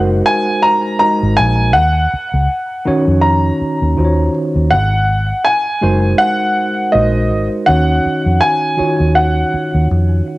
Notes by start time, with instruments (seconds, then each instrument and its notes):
Already playing: fingered electric bass F#1, tine electric piano G#3 D#4 F#4 A#4 C5
0.26 grand piano G#5
0.63 grand piano A#5
0.99 tine electric piano G#3 D#4 F#4 A#4 D#5, grand piano A#5
1.23 fingered electric bass G#1
1.37 fingered electric bass A#1, grand piano G#5
1.73 fingered electric bass D#2, grand piano F#5
2.13 muted fingered electric bass stroke
2.34 fingered electric bass C#2
2.85 tine electric piano D#3 C#4 D#4 F#4 C#5, muted fingered electric bass stroke
3.08 fingered electric bass F2
3.21 grand piano A#5
3.61 muted fingered electric bass stroke
3.82 fingered electric bass D#2
3.96 fingered electric bass D#2, tine electric piano D#3 D#4 F4 F#4 C5
4.05 tine electric piano C#5
4.56 fingered electric bass D#2
4.71 fingered electric bass G#1, grand piano F#5
5.45 grand piano G#5
5.81 fingered electric bass F#1, tine electric piano G#3 D#4 F#4 A#4 C5
6.18 grand piano F#5
6.92 fingered electric bass A#1, tine electric piano G#3 D#4 F#4 A#4 C5, grand piano D#5
7.32 fingered electric bass G#1
7.66 fingered electric bass D#2, tine electric piano D#3 C#4 D#4 F#4 C#5, grand piano F#5
8.06 muted fingered electric bass stroke
8.26 fingered electric bass F2
8.41 grand piano G#5
8.77 tine electric piano D#3 D#4 F4 F#4 C#5, muted fingered electric bass stroke
9.00 fingered electric bass D#2
9.15 grand piano F#5
9.54 muted fingered electric bass stroke
9.75 fingered electric bass D#2
9.91 fingered electric bass F2